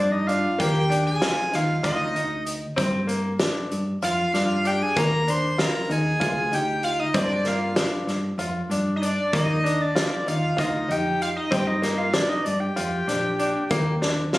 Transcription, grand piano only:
Already playing: D4
0.28 D4
0.58 A#3
0.90 D4
1.22 F4
1.52 D#4
1.83 F4
2.15 D#4
2.76 C4
3.07 A#3
3.39 D4
4.03 F4
4.34 D4
4.65 D4
4.96 A#3
5.28 D4
5.58 F4
5.89 D#4
6.20 F4
6.51 D#4
7.14 C4
7.45 A#3
7.76 D4
8.39 F4
8.71 D4
9.02 D4
9.33 A#3
9.64 D4
9.95 F4
10.26 D#4
10.57 F4
10.88 D#4
11.51 C4
11.82 A#3
12.14 D4
12.76 F4
13.07 D4
13.39 D4
13.71 A#3
14.02 D4
14.34 F4

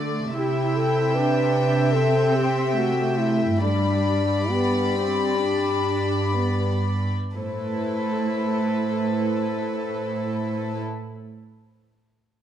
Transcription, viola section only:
Already playing: A3
0.36 E4
1.14 D4
1.94 C4
2.75 A3
3.59 G3
4.51 B3
4.96 C4
5.40 D4
6.35 B3
7.36 A3 E4

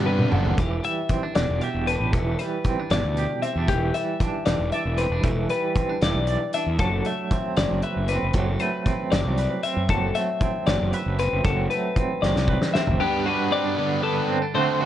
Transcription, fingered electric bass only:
Already playing: G2
0.32 F#1
0.58 E1
1.36 E1
1.49 E1
1.74 E1
2.00 A1
2.13 E1
2.90 G1
3.04 D2
3.55 E2
3.69 E1
4.47 E1
4.59 E1
4.85 E1
5.10 E1
5.24 E1
6.02 E1
6.15 B1
6.66 E2
6.79 F#1
7.57 F#1
7.71 F#1
7.96 F#1
8.22 F#1
8.34 F#1
9.12 F#1
9.24 C2
9.77 F#2
9.89 F#1
10.67 F#1
10.81 F#1
11.06 F#1
11.32 F#1
11.45 F#1
12.23 F#1
12.35 C2
12.88 F#1

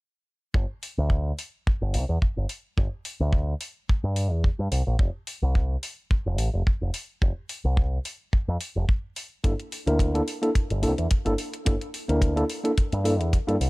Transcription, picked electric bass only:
0.54 G1
0.98 D2
1.67 muted picked electric bass stroke
1.81 G1
1.94 C2
2.09 E2
2.37 G1
2.78 G1
3.20 D2
4.04 G2
4.31 E2
4.59 G2
4.72 C2
4.87 A#1
4.99 F1
5.42 C2
6.11 muted picked electric bass stroke
6.26 F1
6.39 A1
6.54 F1
6.81 F1
7.22 F1
7.65 C2
8.48 F2
8.76 F1
9.44 G1
9.87 D2
10.55 muted picked electric bass stroke
10.71 G1
10.83 C2
10.98 E2
11.26 G1
11.67 G1
12.09 D2
12.93 G2
13.20 E2
13.48 G2
13.60 C2

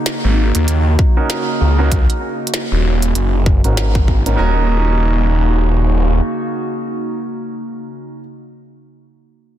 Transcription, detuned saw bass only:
0.24 G#1
0.55 D#2
1.61 C#2
2.72 D#1
3.15 F#1
3.64 G#1
4.26 G#1
4.39 D#1

